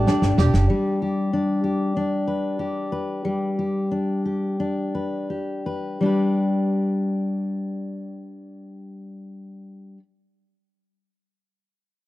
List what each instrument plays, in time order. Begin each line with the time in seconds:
Already playing: steel-string acoustic guitar G3 G4, upright piano A3 D4 G4 D5, five-string banjo A3 D4 G4, electric slide guitar G4, harmonium G4 D5 A5
0.07 five-string banjo D4, steel-string acoustic guitar D4, snare
0.22 upright bass G1, snare
0.38 upright bass E1, five-string banjo G4, steel-string acoustic guitar G4, snare
0.53 upright bass F#1, snare
0.70 steel-string acoustic guitar G3
1.02 steel-string acoustic guitar G4
1.33 steel-string acoustic guitar D4
1.64 steel-string acoustic guitar G4
1.97 steel-string acoustic guitar D4
2.27 steel-string acoustic guitar B4
2.59 steel-string acoustic guitar G4
2.92 steel-string acoustic guitar B4
3.25 steel-string acoustic guitar G3
3.59 steel-string acoustic guitar G4
3.91 steel-string acoustic guitar D4
4.25 steel-string acoustic guitar G4
4.60 steel-string acoustic guitar D4
4.95 steel-string acoustic guitar B4
5.30 steel-string acoustic guitar G4
5.66 steel-string acoustic guitar B4
6.01 steel-string acoustic guitar G3 D4 G4
6.06 steel-string acoustic guitar B4